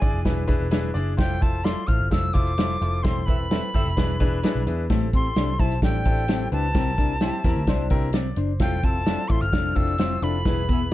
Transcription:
Already playing: flute G#5
0.01 picked electric bass G#1, grand piano D4 E4 G#4 D5, kick, closed hi-hat
0.14 picked electric bass F1
0.25 picked electric bass E1, grand piano D4 E4 G#4 B4, kick, snare, closed hi-hat
0.48 grand piano D4 E4 G#4 B4, kick, closed hi-hat
0.60 picked electric bass E1
0.71 grand piano D4 E4 G#4 B4, snare, closed hi-hat
0.94 picked electric bass F#1, grand piano D4 E4 G#4 D5, closed hi-hat
1.17 picked electric bass F1, grand piano E4 F4 A4 C5, flute G5, kick, snare, closed hi-hat
1.41 grand piano E4 F4 A4 C5, flute A5, kick, closed hi-hat
1.64 grand piano E4 F4 A4 D5, flute C6, snare, closed hi-hat
1.87 picked electric bass A1, grand piano E4 F4 A4 C5, flute F6, kick, closed hi-hat
2.00 picked electric bass G1
2.11 picked electric bass F1, grand piano E4 F4 A4 C5, flute E6, kick, snare, closed hi-hat
2.34 picked electric bass F1, grand piano E4 F4 A4 C5, flute D6, kick, closed hi-hat
2.47 closed hi-hat
2.58 grand piano E4 F4 A4 C5, snare, closed hi-hat
2.81 picked electric bass F1, grand piano E4 F4 A4 C5, closed hi-hat
3.03 picked electric bass E1, grand piano C4 E4 A4 C5, flute C6, kick, snare, closed hi-hat
3.26 grand piano C4 E4 A4 B4, saxophone section C4 A4 E5, flute B5, kick, closed hi-hat
3.51 grand piano C4 E4 A4 B4, saxophone section C4 A4 E5, snare, closed hi-hat
3.74 picked electric bass G1, grand piano C4 E4 A4 C5, saxophone section C4 A4 E5, kick, snare, closed hi-hat
3.86 picked electric bass F1, closed hi-hat
3.97 picked electric bass E1, grand piano D4 E4 G#4 B4, kick, snare, closed hi-hat
4.20 picked electric bass E1, grand piano D4 E4 G#4 B4, kick, closed hi-hat
4.43 grand piano D4 E4 G#4 B4, muted picked electric bass stroke, snare, closed hi-hat
4.55 picked electric bass B1
4.67 picked electric bass E2, grand piano D4 E4 G#4 B4, closed hi-hat
4.90 picked electric bass A1, clean electric guitar A3, grand piano C4 E4 G4 A4, kick, snare, closed hi-hat
5.13 clean electric guitar C4, grand piano C4 E4 G4 A4, flute C6, kick, closed hi-hat
5.36 picked electric bass C2, grand piano C4 E4 G4 A4, clean electric guitar D4, snare, closed hi-hat
5.59 picked electric bass B1, grand piano C4 E4 G4 C5, clean electric guitar E4, flute A5, kick, closed hi-hat
5.71 closed hi-hat
5.82 picked electric bass A1, grand piano C4 E4 G4 A4, clean electric guitar D4, flute G5, kick, snare, closed hi-hat
6.05 picked electric bass A1, grand piano C4 E4 G4 A4, kick, closed hi-hat
6.17 closed hi-hat
6.28 clean electric guitar C4, grand piano C4 E4 G4 A4, snare, closed hi-hat
6.52 picked electric bass C#2, grand piano C4 E4 G4 B4, clean electric guitar D4, flute A5, closed hi-hat
6.74 picked electric bass C2, grand piano C4 E4 G4 A#4, clean electric guitar C4, kick, snare, closed hi-hat
6.97 grand piano C4 E4 G4 A#4, clean electric guitar D4, kick, closed hi-hat
7.20 grand piano C4 E4 G4 C5, clean electric guitar E4, snare, closed hi-hat
7.44 picked electric bass E2, grand piano C4 E4 G4 A#4, clean electric guitar E4, kick, snare, closed hi-hat
7.56 picked electric bass D2
7.67 picked electric bass C2, grand piano C4 E4 G4 C5, clean electric guitar D4, kick, snare, closed hi-hat
7.90 picked electric bass C2, grand piano C4 E4 G4 A#4, kick, closed hi-hat
8.13 clean electric guitar C4, grand piano D5, snare, closed hi-hat
8.36 picked electric bass F#1, clean electric guitar D4, grand piano C5, closed hi-hat
8.60 picked electric bass F1, grand piano C4 E4 F4 A4, clean electric guitar F4, flute G5, kick, snare, closed hi-hat
8.83 clean electric guitar C4, grand piano C4 E4 F4 A4, flute A5, kick, closed hi-hat
9.06 grand piano C4 E4 F4 A4, clean electric guitar D4, snare, closed hi-hat
9.28 picked electric bass A1, grand piano C4 E4 F4 A4, clean electric guitar E4, flute C6 D6, kick, closed hi-hat
9.41 picked electric bass G1, flute F6, closed hi-hat
9.52 picked electric bass F1, grand piano C4 E4 F4 A4, clean electric guitar D4, kick, snare, closed hi-hat
9.75 picked electric bass F1, grand piano C4 E4 F4 A4, flute E6, kick, closed hi-hat
9.87 closed hi-hat
9.98 grand piano C4 E4 F4 C5, clean electric guitar C4, snare, closed hi-hat
10.22 picked electric bass F1, grand piano C4 E4 F4 A4, clean electric guitar D4, flute B5, closed hi-hat
10.45 picked electric bass E1, grand piano B3 E4 G#4 B4, clean electric guitar E4, kick, snare, closed hi-hat
10.68 grand piano B3 E4 G#4 B4, clean electric guitar B3, saxophone section B3 G#4 E5, kick, closed hi-hat

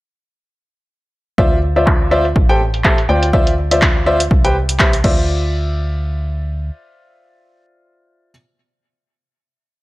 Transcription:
1.38 fm bass D2, upright piano F4 C5 D5 E5, kick
1.52 snare
1.76 upright piano F4 C5 D5 E5, closed hi-hat
1.87 kick, clap
2.11 upright piano F4 C5 D5 E5
2.25 closed hi-hat
2.36 fm bass A1, kick
2.49 upright piano G4 A4 C5 G5, closed hi-hat
2.60 snare
2.74 closed hi-hat
2.84 upright piano G4 A4 C5 E5, kick, clap
2.98 closed hi-hat
3.09 fm bass D2, upright piano F4 C5 D5 G5
3.23 snare, closed hi-hat
3.33 upright piano F4 C5 D5 E5, kick
3.47 closed hi-hat
3.57 closed hi-hat
3.71 upright piano F4 C5 D5 E5, closed hi-hat
3.82 kick, clap
3.96 snare
4.06 upright piano F4 C5 D5 E5
4.20 closed hi-hat
4.31 fm bass C2, kick
4.44 upright piano G4 B4 C5 G5, snare, closed hi-hat
4.69 closed hi-hat
4.79 upright piano G4 B4 C5 E5, kick, clap
4.93 closed hi-hat
5.04 fm bass D2, upright piano F4 C5 D5 E5, kick, crash

